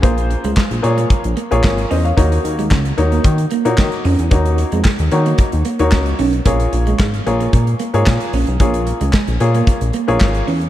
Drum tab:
HH |xxxx-xxxxxxx-xox|xxxx-xxxxxxx-xox|xxxx-xxxxxxx-xox|xxxx-xxxxxxx-xox|
CP |----x-------x---|----x-------x---|----x-------x---|----x-------x---|
SD |----o-------o---|----o-------o---|----o-------o---|----o-------o---|
BD |o---o---o---o---|o---o---o---o---|o---o---o---o---|o---o---o---o---|

HH |xxxx-xxxxxxx-xox|
CP |----x-------x---|
SD |----o-------o---|
BD |o---o---o---o---|